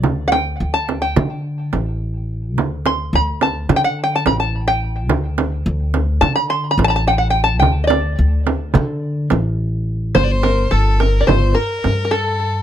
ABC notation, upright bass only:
X:1
M:9/8
L:1/8
Q:3/8=71
K:none
V:1 name="Upright bass" clef=bass
D,,2 D,,2 D,2 A,,,3 | D,,2 D,,2 D,2 A,,,3 | D,,2 D,,2 D,2 A,,,3 | D,,2 D,,2 D,2 A,,,3 |
G,,,2 G,,,2 G,,, z G,,3 |]